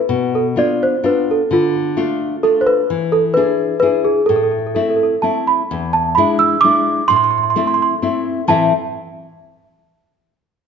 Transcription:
Already playing: B4
0.09 B2
0.35 A4
0.56 B3 D4 F4 D5
0.83 C5
1.03 B3 D4 F4 B4
1.31 A4
1.51 D3 F4
1.97 A3 D4 F4
2.43 A3 D4 F4 A4
2.61 C5
2.67 B4
2.90 E3
3.12 A4
3.34 D4 E4 G#4 B4
3.80 D4 E4 G#4 B4
4.04 G#4
4.26 A2 A4
4.36 A4
4.43 A4
4.51 A4
4.58 A4
4.67 A4
4.75 A3 C4 E4 A4
4.83 A4
4.90 A4
4.96 A4
5.03 A4
5.22 A3 C4 E4 A5
5.47 B5
5.71 E2
5.93 A5
6.15 G#3 D4 E4 B5
6.39 E6
6.61 G#3 D4 D6
6.65 E4
7.08 A2 C6
7.16 C6
7.24 C6
7.31 C6
7.38 C6
7.43 C6
7.50 C6
7.56 A3 C4 E4 C6
7.67 C6
7.74 C6
7.82 C6
8.02 A3 C4 E4
8.48 A2 E3 C4 E4 A4 E5 A5

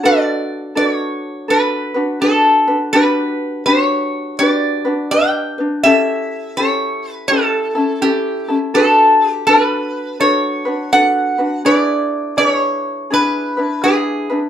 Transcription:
0.03 D4 F#4 A4 B4 D5
0.75 D4 F#4 A4 B4 D5
0.88 C#5
1.48 D4 F#4 A4 B4
1.94 D4 F#4 B4
2.21 D4 F#4 A4 B4
2.67 D4 F#4 B4
2.93 D4 F#4 G4 B4
3.66 D4 F#4 G4 B4 C#5
4.39 D4 F#4 G4 B4 D5
4.85 D4 F#4 B4
5.11 D4 G4 B4 G5
5.58 D4 B4
5.83 C#4 E4 G4 A4 E5
6.57 C#4 E4 G4 A4 C#5
7.12 B4
7.28 C#4 E4 G4 A4
7.32 A4
7.75 C#4 E4 A4
8.01 C#4 E4 G4 A4
8.48 C#4 E4 A4
8.74 D4 F#4 A4 B4
9.30 G4
9.47 D4 F#4 A4 B4
10.20 D4 F#4 A4 B4 C#5
10.65 D4 F#4 B4
10.92 D4 F#4 A4 B4 F#5
11.38 D4 F#4 B4
11.65 D4 E4 G#4 B4 D5
12.37 D4 E4 G#4 B4 D5
12.49 C#5
13.10 D4 E4 G#4 B4
13.57 D4 E4 B4
13.83 D4 E4 G#4 B4
14.30 D4 E4 B4

